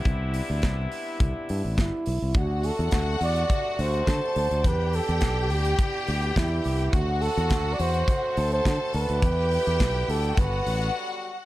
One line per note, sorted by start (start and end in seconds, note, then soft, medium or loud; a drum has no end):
0.00 2.18 C3 medium
0.00 2.18 G3 medium
0.00 2.18 B3 medium
0.00 2.18 D4 medium
0.00 2.18 E4 medium
0.05 0.40 C2 medium
0.05 kick loud
0.05 closed hi-hat medium
0.34 open hi-hat medium
0.50 0.60 D2 medium
0.62 0.86 C2 medium
0.62 kick medium
0.62 snare loud
0.62 closed hi-hat medium
0.92 open hi-hat medium
1.20 1.32 C2 loud
1.20 kick loud
1.20 closed hi-hat medium
1.49 1.61 G2 medium
1.49 open hi-hat medium
1.65 1.80 A1 medium
1.78 1.90 G1 medium
1.78 2.39 E4 medium
1.78 kick loud
1.78 snare loud
1.78 closed hi-hat medium
2.06 2.19 B1 medium
2.06 open hi-hat medium
2.22 2.33 C2 medium
2.34 2.69 D2 loud
2.34 4.62 C3 medium
2.34 4.62 F#3 medium
2.34 4.62 A3 medium
2.34 6.90 D4 medium
2.34 4.03 F#4 medium
2.34 4.62 F#4 medium
2.34 2.67 F#4 medium
2.34 4.03 F#5 loud
2.34 kick loud
2.34 closed hi-hat medium
2.63 3.22 A4 medium
2.63 open hi-hat medium
2.79 2.89 E2 medium
2.79 closed hi-hat soft
2.91 3.15 D2 loud
2.91 kick medium
2.91 snare loud
2.91 closed hi-hat medium
3.21 3.43 E2 medium
3.21 3.74 D5 loud
3.21 open hi-hat medium
3.36 closed hi-hat soft
3.50 kick loud
3.50 closed hi-hat medium
3.74 3.82 D5 medium
3.79 4.01 D2 medium
3.79 4.68 C5 loud
3.79 open hi-hat medium
3.94 closed hi-hat soft
4.06 4.19 D3 medium
4.06 4.63 A4 medium
4.06 4.63 A5 medium
4.06 kick loud
4.06 snare loud
4.06 closed hi-hat medium
4.36 4.48 D2 medium
4.36 open hi-hat medium
4.51 4.62 D2 medium
4.51 closed hi-hat soft
4.64 4.99 E2 medium
4.64 6.91 E3 medium
4.64 6.91 G3 medium
4.64 6.91 B3 medium
4.64 6.91 G4 medium
4.64 6.90 G4 medium
4.64 4.97 B4 medium
4.64 6.89 G5 medium
4.64 kick loud
4.64 closed hi-hat medium
4.93 5.51 A4 medium
4.93 open hi-hat medium
5.09 5.19 E2 medium
5.09 closed hi-hat medium
5.21 5.51 B1 medium
5.21 kick medium
5.21 snare loud
5.21 closed hi-hat medium
5.50 5.73 D2 medium
5.50 6.07 G4 medium
5.50 open hi-hat medium
5.65 closed hi-hat soft
5.79 kick loud
5.79 closed hi-hat medium
6.07 6.30 D2 medium
6.07 open hi-hat medium
6.22 closed hi-hat soft
6.36 6.59 E2 loud
6.36 6.96 E4 medium
6.36 kick loud
6.36 snare loud
6.36 closed hi-hat medium
6.64 6.88 C2 medium
6.64 open hi-hat medium
6.79 closed hi-hat soft
6.93 7.28 D2 loud
6.93 11.35 D3 medium
6.93 9.20 F#3 medium
6.93 9.20 A3 medium
6.93 9.20 C4 medium
6.93 9.20 F#4 medium
6.93 8.34 F#4 loud
6.93 7.24 F#4 medium
6.93 8.34 F#5 medium
6.93 kick loud
6.93 closed hi-hat medium
7.22 7.75 A4 loud
7.22 open hi-hat medium
7.37 7.51 E2 loud
7.37 closed hi-hat medium
7.50 7.73 D2 medium
7.50 kick loud
7.50 snare loud
7.50 closed hi-hat medium
7.73 7.82 D5 medium
7.79 8.02 E2 medium
7.79 8.52 C5 loud
7.79 open hi-hat medium
7.94 closed hi-hat medium
8.08 kick loud
8.08 closed hi-hat medium
8.36 8.59 D2 loud
8.36 9.20 A4 medium
8.36 9.21 A5 medium
8.36 open hi-hat medium
8.52 8.92 C5 loud
8.52 closed hi-hat soft
8.65 8.77 D3 loud
8.65 kick loud
8.65 snare loud
8.65 closed hi-hat medium
8.94 9.06 D2 medium
8.94 10.12 B4 loud
8.94 open hi-hat medium
9.09 9.20 D2 medium
9.09 closed hi-hat soft
9.22 9.57 E2 loud
9.22 10.36 E3 medium
9.22 10.36 G3 medium
9.22 11.35 B3 medium
9.22 10.36 E4 medium
9.22 10.34 G4 medium
9.22 10.34 G5 medium
9.22 kick loud
9.22 closed hi-hat medium
9.51 open hi-hat medium
9.67 9.77 E2 medium
9.67 closed hi-hat soft
9.80 10.03 B1 loud
9.80 kick loud
9.80 snare loud
9.80 closed hi-hat medium
10.08 10.31 D2 medium
10.08 10.40 A4 medium
10.08 open hi-hat medium
10.24 closed hi-hat soft
10.36 10.60 G1 loud
10.36 11.35 F#3 medium
10.36 11.35 G3 medium
10.36 11.45 F#4 medium
10.36 11.35 F#4 medium
10.36 10.95 B4 medium
10.36 11.45 F#5 loud
10.36 kick loud
10.36 closed hi-hat medium
10.66 10.89 A1 medium
10.66 open hi-hat medium
10.82 closed hi-hat soft